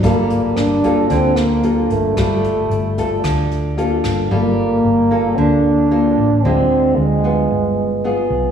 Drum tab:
HH |xxxxxxxx|xxxxxxxx|--------|--------|
SD |--r--r--|r---r--r|--------|--------|
BD |o--oo--o|o--oo--o|--------|--------|